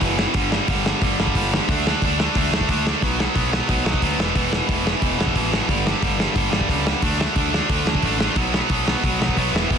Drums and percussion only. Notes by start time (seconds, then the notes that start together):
0.01 kick, open hi-hat
0.19 snare
0.34 kick, open hi-hat
0.52 snare
0.68 kick, open hi-hat
0.86 snare
1.02 kick, open hi-hat
1.20 snare
1.27 kick
1.35 kick, open hi-hat
1.54 snare
1.69 kick, open hi-hat
1.87 snare
2.02 kick, open hi-hat
2.20 snare
2.35 kick, open hi-hat
2.54 snare
2.61 kick
2.69 kick, open hi-hat
2.87 snare
3.02 kick, open hi-hat
3.20 snare
3.36 kick, open hi-hat
3.53 snare
3.69 kick, open hi-hat
3.86 snare
3.94 kick
4.02 kick, open hi-hat
4.20 snare
4.36 kick, open hi-hat
4.53 snare
4.69 kick, open hi-hat
4.87 snare
5.02 kick, open hi-hat
5.21 snare
5.27 kick
5.36 kick, open hi-hat
5.53 snare
5.69 kick, open hi-hat
5.87 snare
6.03 kick, open hi-hat
6.20 snare
6.36 kick, open hi-hat
6.53 snare
6.61 kick
6.69 kick, open hi-hat
6.87 snare
7.02 kick, open hi-hat
7.21 snare
7.36 kick, open hi-hat
7.54 snare
7.70 kick, open hi-hat
7.87 snare
7.95 kick
8.02 kick, open hi-hat
8.20 snare
8.36 kick, open hi-hat
8.54 snare
8.69 kick, open hi-hat
8.88 snare
9.04 kick, open hi-hat
9.22 snare
9.29 kick
9.37 kick, open hi-hat
9.56 snare
9.71 kick, open hi-hat